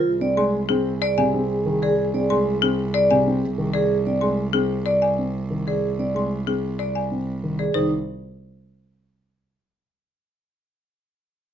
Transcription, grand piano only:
\new Staff \with { instrumentName = "Grand piano" } { \time 6/4 \key c \minor \tempo 4 = 187 r8 c'8 aes8 r8 c'8 r4 c8 c'8 r8 ees8 r8 | r8 c'8 aes8 r8 c'8 r4 c8 c'8 r8 ees8 r8 | r8 c'8 aes8 r8 c'8 r4. c'8 r8 ees8 r8 | r8 c'8 aes8 r8 c'8 r4. c'8 r8 ees8 r8 |
ees8 r1 r4. | r1. | }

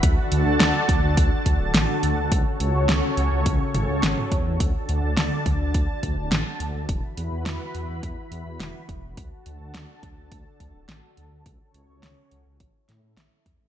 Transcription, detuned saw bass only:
\new Staff \with { instrumentName = "Detuned saw bass" } { \clef bass \time 4/4 \key d \major \tempo 4 = 105 d,16 r16 d,16 d,16 d,16 r16 d,16 d,16 d,16 r16 d,16 d,,16 a,,16 r16 d,16 d,16 | cis,16 r16 cis,16 cis,16 cis,16 r16 cis,16 cis,16 cis,16 r16 gis,,16 cis,16 gis,,16 r16 e,16 e,16 | d,16 r16 d,16 d,16 d,16 r16 d,16 d,16 d,16 r16 d,16 d,,16 a,,16 r16 d,16 d,16 | e,,16 r16 e,16 e,16 e,16 r16 e,16 e,16 e,16 r16 e,16 e,16 e,,16 r16 e,,16 e,,16 |
d,16 r16 d,16 d,16 d,16 r16 d,16 d,16 d,16 r16 d,16 d,,16 a,,16 r16 d,16 d,16 | cis,16 r16 cis,16 cis,16 cis,16 r16 cis,16 cis,16 a,,16 r16 a,16 a,16 a,,16 r16 e,16 a,,16 | }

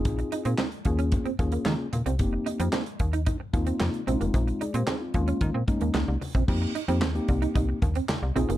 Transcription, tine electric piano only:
\new Staff \with { instrumentName = "Tine electric piano" } { \time 4/4 \key f \minor \tempo 4 = 112 << { r1 | r1 | r8 <aes' d''>16 <g' c''>16 <ees' aes'>16 <c' f'>8 r2 r16 | r1 | } \\ { <c' ees' f' aes'>4 r8 <bes des' f' aes'>8. r16 <bes des' f' aes'>8. r8. | <bes c' ees' g'>4~ <bes c' ees' g'>16 r4 r16 <bes c' ees' f'>8. r16 <aes c' d' ees' f'>8~ | <aes c' d' ees' f'>4 r8 <aes bes des' f'>8. r16 <aes bes des' ees'>8. r8. | <bes c' ees' g'>8 r16 <bes c' ees' g'>16 r16 <bes c' ees' g'>4~ <bes c' ees' g'>16 r4 <c' ees' f' aes'>8 | } >> }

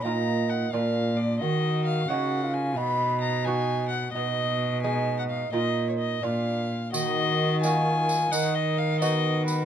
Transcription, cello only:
\new Staff \with { instrumentName = "Cello" } { \clef bass \time 6/8 \key ees \minor \tempo 4. = 87 bes,4. bes,4. | ees4. des4. | b,2. | ces2. |
bes,4. bes,4 r8 | ees2. | dis2. | }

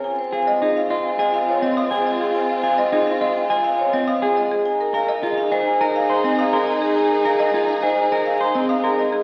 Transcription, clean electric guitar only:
\new Staff \with { instrumentName = "Clean electric guitar" } { \time 4/4 \key des \major \tempo 4 = 104 r8 aes'16 r16 ees'16 r16 f'16 r16 aes'16 r8 c'16 r16 aes'16 r8 | r8 aes'16 r16 ees'16 r16 f'16 r16 aes'16 r8 c'16 r16 aes'16 r8 | r8 bes'16 r16 f'16 r16 aes'16 r16 bes'16 r16 c''16 c'16 r16 bes'16 r8 | r8 bes'16 r16 f'16 r16 aes'16 r16 bes'16 r16 c''16 c'16 r16 bes'16 r8 | }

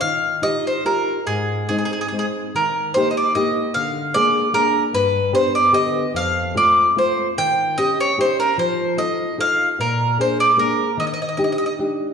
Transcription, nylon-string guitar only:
\new Staff \with { instrumentName = "Nylon-string guitar" } { \time 3/4 \key aes \major \tempo 4 = 148 ees4 <ees' f' g'>4 <ees' f' g'>4 | aes,4 <aes c' ees'>4 <aes c' ees'>4 | \key ees \major ees4 <bes ees' g'>4 <bes ees' g'>4 | d4 <bes d' aes'>4 <bes d' aes'>4 |
g,4 <b d' g'>4 <d b g'>4 | f,4 <a c' f'>4 <a c' f'>4 | ees4 <des' ees' g'>4 <des' ees' g'>4 | f4 <ees' f' a'>4 <ees' f' a'>4 |
bes,4 <bes d' aes'>4 <bes d' aes'>4 | ees4 <d' ees' g'>4 <d' ees' g'>4 | }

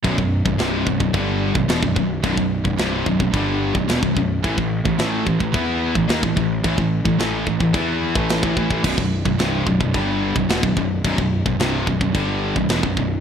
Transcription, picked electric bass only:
\new Staff \with { instrumentName = "Picked electric bass" } { \clef bass \time 4/4 \tempo 4 = 109 b,,,16 b,,,8 b,,,16 c,,8 b,,,16 b,,,16 g,,8. b,,,16 e,,16 b,,,16 b,,,8 | b,,,16 b,,,8 b,,,16 c,,8 b,,,16 b,,,16 g,,8. b,,,16 e,,16 b,,,16 b,,,8 | a,,16 a,,8 a,,16 a,,8 a,,16 a,,16 e,8. a,,16 dis,16 a,,16 a,,8 | a,,16 a,,8 a,,16 a,,8 a,,16 a,,16 e,8. a,,8 a,,16 a,,16 a,,16 |
b,,,16 b,,,8 b,,,16 c,,8 b,,,16 b,,,16 g,,8. b,,,16 e,,16 b,,,16 b,,,8 | b,,,16 b,,,8 b,,,16 c,,8 b,,,16 b,,,16 g,,8. b,,,16 e,,16 b,,,16 b,,,8 | }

